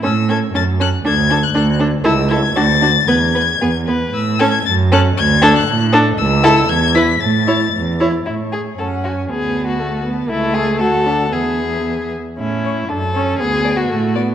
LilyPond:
<<
  \new Staff \with { instrumentName = "Violin" } { \time 2/4 \key a \major \tempo 4 = 117 e'''8 gis'''8 a'''8 fis'''8 | gis'''8. fis'''8. r8 | e'''8 gis'''8 a'''4 | gis'''4. r8 |
e'''8 gis'''8 a'''8 fis'''8 | gis'''8. fis'''8. r8 | e'''4 gis'''8 b'''8 | a'''4. r8 |
cis''4 fis''8 gis''8 | a''2 | a''4 fis''4 | e''4. r8 |
r8 cis''16 r8. cis''16 r16 | r8 d''16 r8. d''16 r16 | }
  \new Staff \with { instrumentName = "Violin" } { \time 2/4 \key a \major a'8 a'8 a'8 a'8 | a'8 a'8 a'8 a'8 | a'8 a'8 fis'8 fis'8 | b'8 b'8 gis'8 b'8 |
r8 a'16 r8. a'16 r16 | r8 a'16 r8. a'16 r16 | r8 a'16 r8. b'16 r16 | r8 cis''16 r8. cis''16 r16 |
e'8 gis'8 a'8 fis'8 | gis'8. fis'8. r8 | e'8 gis'8 a'4 | gis'4. r8 |
e'4 a'4 | gis'8. fis'8. r8 | }
  \new Staff \with { instrumentName = "Viola" } { \time 2/4 \key a \major cis'8 cis'8 cis'8 cis'8 | d'8 d'8 d'8 d'8 | e'8 e'8 d'8 d'8 | b8 b8 b8 b8 |
r8 cis'16 r8. cis'16 r16 | r8 d'16 r8. d'16 r16 | r8 e'16 r8. e'16 r16 | r8 e'16 r8. e'16 r16 |
r4 cis'4 | b4 a8 b8 | a4 fis'8 d'8 | b4. r8 |
cis'4 d'8 cis'8 | b4 a8 b8 | }
  \new Staff \with { instrumentName = "Cello" } { \clef bass \time 2/4 \key a \major a,4 fis,4 | d,4 d,4 | cis,4 d,4 | e,4 e,4 |
a,4 fis,4 | d,4 a,4 | cis,4 e,4 | a,4 e,4 |
a,4 fis,4 | d,2 | cis,4 d,4 | e,4. r8 |
a,4 fis,4 | d,4 a,4 | }
>>